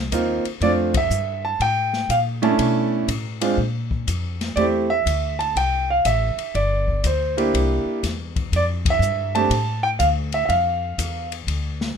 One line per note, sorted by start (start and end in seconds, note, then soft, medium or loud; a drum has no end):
0.00 0.11 C2 medium
0.12 0.43 D#2 medium
0.12 0.42 A#3 medium
0.12 0.42 C4 medium
0.12 0.42 D#4 soft
0.12 0.43 F4 medium
0.12 kick soft
0.12 hi-hat pedal medium
0.12 ride medium
0.45 muted upright bass stroke soft
0.45 ride soft
0.61 1.09 F2 medium
0.61 0.92 A3 medium
0.61 0.92 C4 medium
0.61 0.92 D4 soft
0.61 0.92 F4 medium
0.61 0.70 D5 medium
0.61 kick soft
0.61 ride soft
0.94 1.42 E5 medium
0.94 kick medium
0.94 ride medium
1.10 1.58 G2 medium
1.10 hi-hat pedal medium
1.45 1.61 A5 medium
1.60 2.08 A2 medium
1.60 2.12 G5 medium
1.60 kick soft
1.60 ride soft
1.93 snare soft
2.09 2.57 A#2 medium
2.09 2.18 F5 medium
2.09 kick soft
2.09 hi-hat pedal medium
2.09 ride medium
2.42 3.05 A3 medium
2.42 3.05 C#4 medium
2.42 3.05 D4 medium
2.42 3.05 E4 medium
2.42 2.89 A5 medium
2.42 ride soft
2.59 3.07 B2 medium
2.59 kick soft
2.59 ride medium
3.08 3.56 A2 medium
3.08 kick soft
3.08 hi-hat pedal soft
3.08 ride medium
3.41 3.56 G#3 medium
3.41 3.56 C4 medium
3.41 3.56 D4 medium
3.41 3.56 F4 medium
3.41 ride medium
3.58 4.06 A#2 medium
3.58 kick soft
3.91 kick medium
4.07 4.55 F2 medium
4.07 kick soft
4.07 hi-hat pedal soft
4.07 ride medium
4.41 snare soft
4.41 ride soft
4.56 5.04 E2 medium
4.56 4.87 A3 medium
4.56 4.87 C4 medium
4.56 4.87 E4 soft
4.56 4.87 G4 medium
4.56 4.63 D5 medium
4.56 kick soft
4.56 ride soft
4.90 5.36 E5 medium
5.06 5.54 D2 medium
5.06 kick soft
5.06 hi-hat pedal soft
5.06 ride medium
5.39 5.56 A5 medium
5.39 ride soft
5.56 6.03 C2 medium
5.56 5.87 G5 medium
5.56 kick soft
5.56 ride medium
5.90 6.05 F5 medium
6.05 6.36 A1 medium
6.05 6.56 E5 medium
6.05 kick soft
6.05 hi-hat pedal soft
6.05 ride medium
6.36 muted upright bass stroke soft
6.36 ride soft
6.54 7.02 G1 medium
6.54 7.06 D5 medium
6.54 kick soft
6.54 ride soft
6.88 kick soft
7.04 7.52 D2 medium
7.04 7.51 C5 medium
7.04 kick soft
7.04 hi-hat pedal soft
7.04 ride medium
7.37 7.99 A#3 medium
7.37 8.00 D4 medium
7.37 8.00 E4 medium
7.37 8.00 G4 medium
7.37 ride soft
7.54 7.84 C2 medium
7.54 kick soft
7.54 ride medium
7.85 muted upright bass stroke soft
8.03 8.51 E2 medium
8.03 kick soft
8.03 snare soft
8.03 hi-hat pedal medium
8.03 ride medium
8.36 kick medium
8.36 ride soft
8.52 8.99 F2 medium
8.52 8.63 D5 medium
8.52 kick soft
8.52 ride medium
8.85 kick medium
8.85 ride medium
8.90 9.38 E5 medium
8.99 9.48 G2 medium
8.99 hi-hat pedal medium
9.35 9.50 A3 medium
9.35 9.50 C4 soft
9.35 9.50 D4 medium
9.35 9.50 G4 medium
9.35 9.81 A5 loud
9.35 ride soft
9.50 9.98 A2 medium
9.50 kick soft
9.50 ride medium
9.83 9.88 G5 medium
9.99 10.48 D2 medium
9.99 10.07 F5 medium
9.99 kick soft
9.99 hi-hat pedal medium
9.99 ride medium
10.32 10.44 E5 medium
10.32 ride soft
10.45 10.97 F2 medium
10.45 10.50 E5 medium
10.45 11.28 F5 medium
10.45 kick soft
10.49 ride soft
10.98 11.47 E2 medium
10.98 kick soft
10.98 hi-hat pedal medium
10.98 ride medium
11.32 ride soft
11.47 11.96 D2 medium
11.47 kick soft
11.47 ride medium
11.81 snare soft